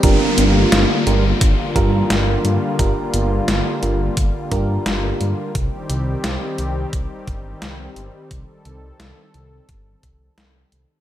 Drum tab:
HH |xxxxxxxx|xxxxxxxx|xxxxxxxx|xxxxxxxx|
SD |--o---o-|--o---o-|--o---o-|--o---o-|
BD |o---oo--|o---oo--|o---oo--|o---oo--|